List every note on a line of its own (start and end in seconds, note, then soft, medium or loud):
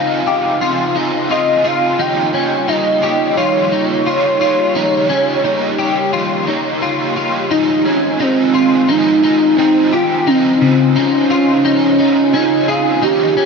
0.00 1.96 C#3 medium
0.00 0.26 C4 medium
0.00 1.97 C4 medium
0.00 0.26 D#4 medium
0.00 7.47 D#4 medium
0.00 0.27 F4 medium
0.00 4.71 F4 medium
0.00 0.24 G#4 medium
0.00 0.96 F5 medium
0.26 0.60 C4 medium
0.26 0.61 D#4 medium
0.26 0.61 F4 soft
0.26 0.61 G4 medium
0.26 0.61 G#4 soft
0.60 0.95 C#3 medium
0.60 0.96 F3 medium
0.60 0.96 C4 medium
0.60 0.95 D#4 medium
0.60 0.96 F4 medium
0.60 0.93 G#4 medium
0.95 1.28 C4 soft
0.95 1.30 D#4 medium
0.95 1.29 F4 medium
0.95 1.30 G#4 medium
1.29 1.64 C4 medium
1.29 1.64 D#4 medium
1.29 1.65 F4 medium
1.29 1.62 G#4 medium
1.29 1.68 D#5 loud
1.64 1.99 C4 soft
1.64 1.99 D#4 soft
1.64 1.99 F4 soft
1.64 1.99 G#4 medium
1.64 2.02 F5 loud
1.99 7.47 C#3 medium
1.99 2.33 D#3 medium
1.99 2.34 F3 medium
1.99 7.47 G3 medium
1.99 2.34 A#3 medium
1.99 2.34 D#4 medium
1.99 2.33 G4 medium
1.99 2.32 C#5 medium
1.99 2.70 G5 loud
2.33 2.66 A#3 soft
2.33 2.68 C#4 medium
2.33 2.67 D#4 soft
2.33 2.68 G4 soft
2.33 2.68 C#5 medium
2.67 3.02 A#3 medium
2.67 3.03 D#4 medium
2.67 3.02 G4 medium
2.67 3.01 C#5 medium
2.67 3.36 D#5 loud
3.02 3.37 A#3 soft
3.02 3.37 D#4 soft
3.02 3.37 G4 medium
3.02 3.37 C#5 medium
3.37 3.72 D#3 medium
3.37 3.72 F3 medium
3.37 3.72 A#3 medium
3.37 3.72 D#4 medium
3.37 3.72 F4 loud
3.37 3.71 G4 loud
3.37 6.78 C#5 medium
3.37 3.70 C#5 medium
3.71 4.04 A#3 soft
3.71 4.06 D#4 medium
3.71 4.07 G4 medium
3.71 4.06 C#5 medium
4.05 4.40 A#3 medium
4.05 4.41 D#4 medium
4.05 4.40 F4 medium
4.05 4.40 G4 medium
4.05 4.39 C#5 medium
4.40 4.74 A#3 soft
4.40 4.75 D#4 medium
4.40 4.75 F4 medium
4.40 4.75 G4 medium
4.40 4.75 C#5 medium
4.75 5.09 D#3 medium
4.75 5.10 F3 medium
4.75 5.10 A#3 medium
4.75 5.10 D#4 medium
4.75 7.48 G4 medium
4.75 5.09 G4 loud
4.75 5.08 C#5 loud
5.09 5.42 A#3 soft
5.09 5.44 C#4 medium
5.09 5.44 D#4 medium
5.09 5.45 G4 medium
5.09 5.44 C#5 medium
5.44 5.78 A#3 medium
5.44 5.79 D#4 medium
5.44 5.78 G4 medium
5.44 5.77 C#5 medium
5.78 6.12 A#3 medium
5.78 6.13 D#4 medium
5.78 6.13 G4 medium
5.78 6.13 C#5 medium
6.12 6.47 D#3 medium
6.12 6.48 F3 medium
6.12 6.48 A#3 medium
6.12 6.48 D#4 loud
6.12 6.48 F4 medium
6.12 6.47 G4 medium
6.12 6.46 C#5 loud
6.47 6.80 A#3 medium
6.47 6.81 D#4 medium
6.47 6.82 G4 medium
6.47 6.82 C#5 medium
6.81 7.16 A#3 medium
6.81 7.17 D#4 medium
6.81 7.15 F4 medium
6.81 7.16 G4 medium
6.81 7.15 C#5 medium
7.16 7.51 A#3 soft
7.16 7.51 D#4 medium
7.16 7.51 F4 medium
7.16 7.51 G4 medium
7.16 7.51 C#5 medium
7.50 7.85 G#2 medium
7.50 10.24 D#3 medium
7.50 7.86 F3 medium
7.50 10.24 G#3 medium
7.50 7.86 C4 medium
7.50 13.46 D#4 medium
7.50 8.23 D#4 medium
7.50 7.85 D#4 medium
7.50 13.46 F4 medium
7.50 7.86 F4 medium
7.50 7.84 G#4 medium
7.85 8.18 C4 soft
7.85 8.19 C#4 medium
7.85 8.20 D#4 medium
7.85 8.19 F4 soft
7.85 8.20 G#4 soft
8.19 8.54 C4 medium
8.19 8.92 C4 medium
8.19 8.54 D#4 medium
8.19 8.55 F4 medium
8.19 8.52 G#4 medium
8.54 8.88 C4 soft
8.54 8.89 D#4 medium
8.54 8.88 F4 medium
8.54 8.89 G#4 medium
8.88 9.23 G#2 medium
8.88 9.23 F3 medium
8.88 9.24 C4 medium
8.88 9.23 D#4 medium
8.88 9.58 D#4 medium
8.88 9.24 F4 medium
8.88 9.22 G#4 medium
9.23 9.55 C4 soft
9.23 9.58 D#4 medium
9.23 9.57 F4 medium
9.23 9.58 G#4 medium
9.57 9.92 C4 medium
9.57 9.94 D#4 loud
9.57 9.91 D#4 medium
9.57 9.92 F4 medium
9.57 9.90 G#4 medium
9.91 10.26 C4 soft
9.91 10.27 D#4 soft
9.91 10.29 F4 medium
9.91 10.26 F4 soft
9.91 10.27 G4 medium
9.91 10.26 G#4 medium
10.26 10.61 C#3 medium
10.26 13.46 C#3 medium
10.26 10.61 F3 medium
10.26 10.61 C4 medium
10.26 10.98 C4 medium
10.26 10.61 D#4 medium
10.26 10.61 F4 medium
10.26 10.59 G#4 medium
10.26 13.00 C5 medium
10.60 10.96 C#3 medium
10.60 10.97 C4 soft
10.60 10.96 D#4 soft
10.60 10.95 F4 soft
10.60 10.95 G#4 soft
10.96 11.65 C#4 medium
10.96 11.29 D#4 medium
10.96 11.30 F4 medium
10.96 11.28 G#4 medium
11.29 11.65 D#4 medium
11.29 11.65 F4 soft
11.29 11.64 G#4 medium
11.64 11.99 C#3 medium
11.64 11.99 F3 medium
11.64 12.36 C#4 medium
11.64 11.98 D#4 medium
11.64 11.99 F4 medium
11.64 11.97 G#4 medium
11.98 12.34 D#4 medium
11.98 12.33 F4 medium
11.98 12.33 G#4 medium
12.33 12.68 C4 medium
12.33 12.68 C#4 medium
12.33 12.71 D#4 loud
12.33 12.68 D#4 medium
12.33 12.68 F4 medium
12.33 12.66 G#4 medium
12.68 13.03 C4 soft
12.68 13.02 D#4 soft
12.68 13.04 F4 loud
12.68 13.03 F4 soft
12.68 13.02 G#4 medium
13.02 13.37 D#3 medium
13.02 13.37 F3 medium
13.02 13.46 F3 medium
13.02 13.38 A#3 medium
13.02 13.37 D#4 medium
13.02 13.46 G4 loud
13.02 13.37 G4 medium
13.02 13.35 C#5 medium
13.36 13.46 A#3 soft
13.36 13.46 C#4 medium
13.36 13.46 D#4 soft
13.36 13.46 G4 medium
13.36 13.46 C#5 soft